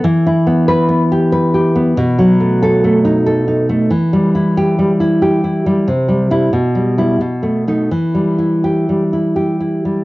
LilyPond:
\new Staff \with { instrumentName = "Nylon-string guitar" } { \time 3/4 \key e \minor \tempo 4 = 92 << { r4 b'8 r4. | r4 a'8 r4. | r4 g'8 r4. | \tuplet 3/2 { r4 e'8 r4 e'8 r4 dis'8 } |
r4 g'8 r4. | } \\ { \tuplet 3/2 { e8 e'8 b8~ b8 b8 g'8 b'8 g'8 b8 } | \tuplet 3/2 { b,8 fis8 a8~ a8 a8 dis'8 a'8 dis'8 a8 } | \tuplet 3/2 { e8 g8 e'8~ e'8 g8 e'8 g'8 e'8 g8 } | \tuplet 3/2 { c8 g8 g8 b,8 g8 g8 b,8 a8 a8 } |
\tuplet 3/2 { e8 g8 e'8~ e'8 g8 e'8 g'8 e'8 g8 } | } >> }